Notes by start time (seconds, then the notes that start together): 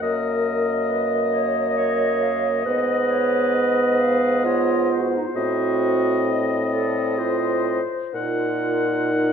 0.01 F#2 A#3 A#4 D#5
0.90 B4
1.34 C#5
1.77 C#5 D#5
2.23 F5
2.66 G#2 B3 B4 D#5
3.10 C#5
3.54 D#5
4.00 F5
4.44 F4 C#5
4.92 C5
4.99 F#4
5.09 F4
5.17 D#4
5.27 F4
5.35 A2 C4 F#4 D#5
6.27 D#5
6.72 A4 D5
7.18 F4 C5
8.14 A#2 D#4 F4 A#4 F#5
9.12 D#4